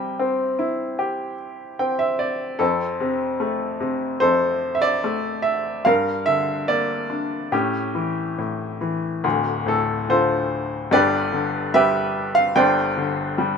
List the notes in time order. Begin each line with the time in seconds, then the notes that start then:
Already playing: C3 G3 E5 G5
0.19 C4
0.59 E4
0.99 G4
1.79 C4 G5
1.99 E5
2.19 D5
2.59 F2 C4 A4
3.00 C3
3.40 A3
3.80 C3
4.20 F2 A4 C5
4.75 E5
4.82 D5
5.04 A3
5.42 E5
5.85 G2 A#4 F5
6.26 D3 E5
6.68 A#3 D5
7.10 D4
7.52 A2 C#4 G4
7.95 E3
8.38 A2
8.81 E3
9.24 D1 D2
9.66 A2 A4
10.09 D3 F4 A4 C5
10.91 G1 G2 G4 B4 D5
11.33 D3
11.74 G3 G4 B4 E5
12.35 F5
12.56 G1 G2 C5 D5 G5
12.97 D3
13.38 G3